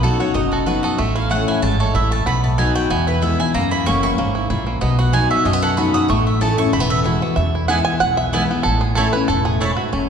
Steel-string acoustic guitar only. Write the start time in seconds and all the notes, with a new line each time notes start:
Already playing: B2
0.03 F#3 B3 D#4 F#4
0.20 D#4 F#4
0.35 F#2
0.66 F#3 B3 D#4 F#4
0.98 A2
1.30 E3 A3 C#4 E4
1.63 G#3
1.95 A2
2.27 B2
2.58 F#3 B3 D#4 F#4
2.91 E2
3.22 E3 G#3 B3 E4
3.40 B3 E4
3.55 F#2
3.87 E3 A#3 C#4 F#4
4.18 G#2
4.50 A#2
4.81 B2
5.13 F#3 B3 D#4 F#4
5.45 F#2
5.77 F#3 B3 D#4 F#4
5.94 D#4 F#4
6.08 A2
6.41 E3 A3 C#4 E4
6.57 C#4 E4
6.73 E2
7.04 E3 G#3 B3 F#4
7.21 B3 F#4
7.37 E2
7.69 E3 G#3 B3 E4
8.01 B2
8.33 E3 G#3 B3 E4
8.51 B3 E4
8.65 A2
8.97 E3 A3 C#4 E4
9.15 C#4 E4
9.30 A2
9.62 G#2
9.93 F#2